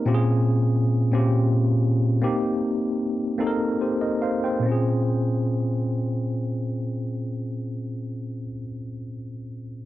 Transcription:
\new Staff \with { instrumentName = "Tine electric piano" } { \time 6/8 \key bes \dorian \tempo 4. = 46 << { r2. | r2 <g' c''>16 <bes' ees''>16 <c'' f''>16 <c'' g''>16~ | <c'' g''>16 r2 r8. | r2. | } \\ { <bes, c' des' f' g' aes'>4 r8 <bes, c' des' f' g'>4 r8 | <bes c' ees' g'>4 r8 <bes c' ees' a' bes'>4 r8 | <bes, c' des' f' aes'>2.~ | <bes, c' des' f' aes'>2. | } >> }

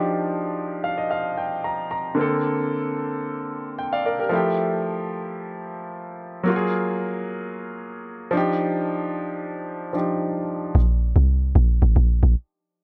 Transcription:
<<
  \new Staff \with { instrumentName = "Grand piano" } { \time 4/4 \key bes \major \tempo 4 = 112 << { r4. f''16 ees''16 f''8 g''8 bes''8 bes''8 | r2. g''16 <d'' f''>16 <bes' d''>16 <g' bes'>16~ | <g' bes'>16 r2. r8. | r1 |
r1 | r1 | } \\ { <f d' ees' g'>2.~ <f d' ees' g'>8 r8 | <d bes c' a'>1 | <f a e' g'>1 | <ges bes f' ges' aes'>2.~ <ges bes f' ges' aes'>8 <f d' ees' g'>8~ |
<f d' ees' g'>2~ <f d' ees' g'>8 <f d' ees' g'>4. | r1 | } >> }
  \new Staff \with { instrumentName = "Log drum bass" } { \clef bass \time 4/4 \key bes \major r1 | r1 | r1 | r1 |
r1 | bes,,8. c,8. bes,,8 a,,16 bes,,8 bes,,16 r4 | }
>>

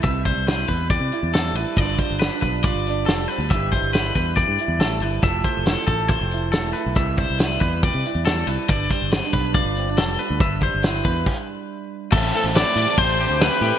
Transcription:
<<
  \new Staff \with { instrumentName = "Trumpet" } { \time 4/4 \key c \major \tempo 4 = 139 r1 | r1 | r1 | r1 |
r1 | r1 | r1 | r8 a'8 d''4 c''4 b'4 | }
  \new Staff \with { instrumentName = "Clean electric guitar" } { \time 4/4 \key c \major e''8 c''8 b'8 b'8 d''4 a'8 b'8 | d''8 c''8 b'8 b'8 d''4 a'8 b'8 | e''8 c''8 b'8 b'8 d''4 a'8 b'8 | e''8 c''8 a'8 a'8 c''4 a'8 b'8 |
e''8 c''8 b'8 b'8 d''4 a'8 b'8 | d''8 c''8 b'8 b'8 d''4 a'8 b'8 | e''8 c''8 b'8 b'8 r2 | a'4 b'8 d''8 c''8 g'8 b'8 g'8 | }
  \new Staff \with { instrumentName = "Clean electric guitar" } { \time 4/4 \key c \major << { b'4 e'8 b'8 g'8 e'4 e'8 | <g d' f' b'>4 d'8 b'8 f'8 d'4 c'16 d'16 | <g e' g' b'>4 e'8 b'8 g'8 e'4 e'8 | <a e' g' a'>4 e'8 a'8 e'16 g'16 e'4 e'8 |
<g e' g' b'>4 e'8 b'8 g'8 e'4 e'8 | b'4 c'16 d'16 b'8 f'8 c'16 d'8. d'8 | b'4 e'8 b'8 r2 | r8 c'8 e'16 g'16 g'16 a'16 g'8 c'8 g'4 | } \\ { c8 g2~ g8 g4 | g,8 g2~ g8 g4 | g,8 g2~ g8 g4 | f8 a2~ a8 a4 |
c8 g2~ g8 g4 | g,8 g2~ g8 g4 | g,8 g2.~ g8 | a,2.~ a,8 a8 | } >> }
  \new Staff \with { instrumentName = "Overdriven electric guitar" } { \time 4/4 \key c \major r1 | r1 | r1 | r1 |
r1 | r1 | r1 | <a, e a c' e'>8 <a c' e'>8 <e a c' e'>8 <a, e a c' e'>8 <e a c' e'>8 <a, e a c' e'>8 <e a c' e'>8 <a c' e'>8 | }
  \new Staff \with { instrumentName = "Fingered electric bass" } { \clef bass \time 4/4 \key c \major c,8. c,8. e,8. c16 r16 e,8. a,,16 r16 | g,,8 r16 g,,8 r16 b,,8. g,,8. f,,8 r16 d,16 | g,,8. g,,8. e,8. g,16 r16 e,16 a,,8 g,,8 | f,,8 r16 f,,8 r16 a,,8. f,,8. e,,8 r16 b,,16 |
c,8. c,8. e,8. c16 r16 e,8. c,16 r16 | g,,8 r16 g,,8 r16 b,,8. g,,8. f,,8 r16 d,16 | g,,8. g,,8. e,8 r2 | a,,8 r16 a,,8 r16 a,16 r16 a,,8. d,8 r16 a,16 r16 | }
  \new DrumStaff \with { instrumentName = "Drums" } \drummode { \time 4/4 <hh bd>8 <hh bd>8 <hh sn>8 <hh bd>8 <hh bd>8 hh8 <hh sn>8 hh8 | <hh bd>8 <hh bd>8 <hh sn>8 <hh bd>8 <hh bd>8 hh8 <hh sn>8 hh8 | <hh bd>8 <hh bd>8 <hh sn>8 <hh bd>8 <hh bd>8 hh8 <hh sn>8 hh8 | <hh bd>8 <hh bd>8 <hh sn>8 <hh bd>8 <hh bd>8 hh8 <hh sn>8 hh8 |
<hh bd>8 <hh bd>8 <hh sn>8 <hh bd>8 <hh bd>8 hh8 <hh sn>8 hh8 | <hh bd>8 <hh bd>8 <hh sn>8 <hh bd>8 <hh bd>8 hh8 <hh sn>8 hh8 | <hh bd>8 <hh bd>8 <hh sn>16 sn16 <hh bd>8 <cymc bd>4 r4 | <cymc bd>8 hho16 sn16 <hho sn>8 hho8 <hho bd>8 hho8 <hho sn>8 hho8 | }
>>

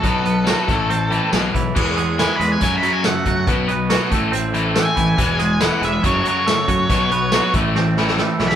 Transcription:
<<
  \new Staff \with { instrumentName = "Lead electric guitar" } { \time 4/4 \key e \major \tempo 4 = 140 a'2. r4 | r4 \tuplet 3/2 { gis''8 b''8 gis''8 gis''8 b''8 gis''8 } fis''4 | r2. gis''4~ | gis''4 fis''8 e''8 cis''8 cis''4.~ |
cis''4. r4. \tuplet 3/2 { r4 b''8 } | }
  \new Staff \with { instrumentName = "Tonewheel organ" } { \time 4/4 \key e \major << { r1 | fis''1 | fis''4. e''2~ e''8 | fis''1~ |
fis''4. e''2~ e''8 | } \\ { r1 | <e b gis'>2 <fis cis' a'>2 | <b b' cis''>4. <a a' c''>2~ <a a' c''>8 | <e e' gis'>2 <fis cis' a'>2 |
<b b' cis''>4. <a a' c''>2~ <a a' c''>8 | } >> }
  \new Staff \with { instrumentName = "Clean electric guitar" } { \clef bass \time 4/4 \key e \major b,8 b8 fis8 a,8 c'8 e8 b,8 e8 | e,8 gis8 e8 gis8 fis,8 fis8 a8 fis8 | b,8 b8 fis8 a,8 c'8 e8 a8 e8 | e,8 gis8 e8 gis8 fis,8 fis8 a8 fis8 |
b,8 b8 fis8 a,8 c'8 e8 a8 e8 | }
  \new Staff \with { instrumentName = "Overdriven electric guitar" } { \clef bass \time 4/4 \key e \major <b, fis b>8 <b, fis>8 <b, fis b>8 <a, e a>8 <a, e>8 <a, e a>8 <b, e fis>8 <b, e>8 | <e gis b>8 <e gis>8 <e gis b>8 <e gis>8 <fis, cis fis>8 <fis, cis fis>8 <fis, cis>8 <fis, cis>8 | <b, fis b>8 <b, fis>8 <b, fis b>8 <a, e a>8 <a, e>8 <a, e a>8 <a, e>8 <a, e>8 | <e gis b>8 <e gis>8 <e gis b>8 <e gis>8 <fis, cis fis>8 <fis, cis fis>8 <fis, cis>8 <fis, cis>8 |
<b, fis b>8 <b, fis>8 <b, fis b>8 <a, e a>8 <a, e>8 <a, e a>8 <a, e>8 <a, e>8 | }
  \new Staff \with { instrumentName = "Fingered electric bass" } { \clef bass \time 4/4 \key e \major b,,4. a,,4. b,,8 b,,8 | e,4. e,8 fis,8 r4 fis,8 | b,,4. a,,2 a,,8 | e,,4. e,,8 fis,,8 r4 fis,8 |
b,,4. a,,2 b,,8 | }
  \new DrumStaff \with { instrumentName = "Drums" } \drummode { \time 4/4 <hh bd>8 hh8 <hh sn tamb>8 <hh bd sn>8 hh8 hh8 <hh sn tamb>8 <hh bd>8 | <cymc bd>8 hh8 <hh sn tamb>8 <hh sn>8 <hh bd>8 hh8 <hh sn tamb>8 <hh bd>8 | <hh bd>8 hh8 <hh sn tamb>8 <hh bd>8 hh8 hh8 <hh sn tamb>8 <hh bd>8 | <hh bd>8 hh8 <hh sn tamb>8 <hh sn>8 <hh bd>8 hh8 <hh sn tamb>8 <hh bd>8 |
<hh bd>8 hh8 <hh sn tamb>8 <hh bd>8 sn8 sn16 sn16 sn8 sn16 sn16 | }
>>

